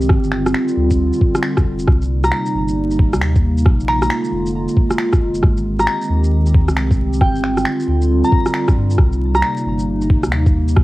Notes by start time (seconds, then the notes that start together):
Already playing: C4
0.01 shaker
0.09 G1 D3 G3 F4, kick, cross-stick
0.24 shaker
0.32 finger snap
0.46 cross-stick, shaker
0.54 finger snap
0.68 shaker
0.77 D2
0.90 kick, shaker
1.13 shaker
1.21 kick
1.35 cross-stick, shaker
1.43 finger snap
1.57 D2, kick, cross-stick, shaker
1.66 F1
1.79 shaker
1.88 C2 C3 G3 A#3 D#4, kick, cross-stick
2.02 shaker
2.24 A#5, cross-stick, shaker
2.32 finger snap
2.46 shaker
2.55 G1
2.68 shaker
2.91 shaker
2.99 kick
3.13 D#2, cross-stick, shaker
3.21 finger snap
3.35 kick, shaker
3.58 shaker
3.65 A#1 D3 G#3 F4, kick, cross-stick
3.80 shaker
3.88 A#5, finger snap
4.02 A#5, cross-stick, shaker
4.10 finger snap
4.24 shaker
4.32 F1
4.47 shaker
4.69 shaker
4.77 kick
4.91 cross-stick, shaker
4.98 finger snap
5.13 kick, cross-stick, shaker
5.21 F1
5.35 shaker
5.43 G#1 D#3 C4 G4, kick, cross-stick
5.57 shaker
5.79 A#5, cross-stick, shaker
5.87 finger snap
6.02 shaker
6.10 D#2
6.24 shaker
6.46 shaker
6.54 kick
6.68 C2, cross-stick, shaker
6.76 finger snap
6.91 kick, shaker
7.13 shaker
7.21 G1 D3 G3 F4 G5, kick, cross-stick
7.36 shaker
7.44 finger snap
7.57 cross-stick, shaker
7.65 finger snap
7.80 shaker
7.88 D2
8.02 shaker
8.24 A#5, shaker
8.32 kick
8.46 cross-stick, shaker
8.54 finger snap
8.68 kick, cross-stick, shaker
8.76 G2
8.90 shaker
8.98 C2 C3 A#3 D#4, kick, cross-stick
9.12 shaker
9.35 A#5, cross-stick, shaker
9.42 finger snap
9.57 shaker
9.66 G1
9.79 shaker
10.01 shaker
10.10 kick
10.23 D#2, cross-stick, shaker
10.32 finger snap
10.46 kick, shaker
10.68 shaker
10.76 A#1 D3 G#3 F4, kick, cross-stick